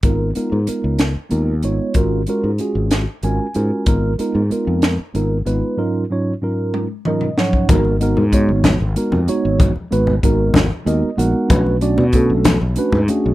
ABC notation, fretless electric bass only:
X:1
M:6/8
L:1/16
Q:3/8=63
K:G#dor
V:1 name="Fretless electric bass" clef=bass
G,,,2 z G,, z C,,2 z D,,2 G,,, z | G,,,2 z G,, z G,,,2 z G,,, z G,, z | G,,,2 z G,, z E,,2 z G,,,2 G,,, z | z12 |
G,,,3 G,,2 G,,,2 G,,, z E,, z G,,,- | G,,, z G,,,2 G,,,2 G,,, z D,, z A,,, z | B,,,3 B,,2 B,,,2 B,,, z G,, z B,,, |]